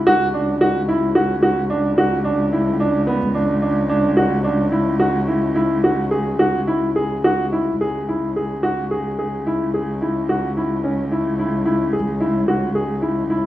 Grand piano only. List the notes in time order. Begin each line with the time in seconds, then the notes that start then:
0.07 F#4
0.34 D4
0.61 F#4
0.88 E4
1.15 F#4
1.43 F#4
1.70 D4
1.98 F#4
2.24 D4
2.53 E4
2.80 D4
3.07 B3
3.34 D4
3.62 D4
3.89 D4
4.17 F#4
4.44 D4
4.72 E4
5.00 F#4
5.28 E4
5.55 E4
5.84 F#4
6.11 G#4
6.39 F#4
6.67 E4
6.96 G#4
7.24 F#4
7.52 E4
7.81 G#4
8.08 E4
8.36 G#4
8.63 F#4
8.91 G#4
9.19 G#4
9.47 E4
9.74 G#4
10.02 E4
10.29 F#4
10.57 E4
10.84 C#4
11.11 E4
11.39 E4
11.65 E4
11.93 G#4
12.20 E4
12.48 F#4
12.75 G#4
13.02 E4
13.30 E4